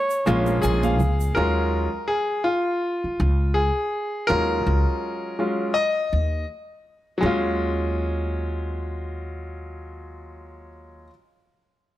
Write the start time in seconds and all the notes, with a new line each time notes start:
Already playing: C#5
0.10 shaker
0.26 A#1 G#3 A#3 C#4 F4, high conga, shaker
0.46 high conga, shaker
0.62 A#1 G#4 G#5, shaker
0.83 F5, high conga, shaker
1.00 C#2, low conga, shaker
1.20 shaker
1.35 D#2 F#3 G#3 C#4 F4 A#4
2.08 G#4
2.44 F4
3.04 muted upright bass stroke
3.20 C#2
3.54 G#4
4.27 D#2 F#3 G#3 C#4 F4 A#4
4.67 C#2
5.39 F#3 G#3 C#4 F4
5.74 D#5
6.13 D#2
7.18 F#3 G#3
7.23 D#2 C#4 F4